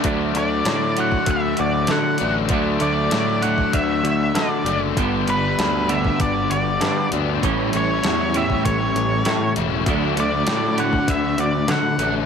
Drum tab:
HH |x-x-x-x-x-x-x-x-|x-x-x-x-x-x-x-x-|x-x-x-x-x-x-x-x-|x-x-x-x-x-x-x-x-|
SD |----o-------o---|----o-------o---|----o-------o---|----o-------o---|
BD |o------oo-------|o------oo-------|o------oo-------|o------oo-------|

HH |x-x-x-x-x-x-x-x-|
SD |----o-------o---|
BD |o------oo-------|